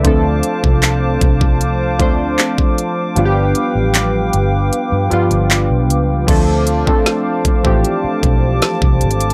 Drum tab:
CC |--------------------------------|--------------------------------|x-------------------------------|
HH |x---x---x---x---x---x-------x---|x---x---x---x---x---x-x-----x---|x---x---x---x---x---x---x---xxxx|
CP |--------x---------------x-------|--------x---------------x-------|--------------------------------|
SD |--------------------------------|--------------------------------|--------o---------------o-------|
BD |o-----o-----o-o-----o-----o-----|--------------------------------|o-----o-----o-o-----o-----o-----|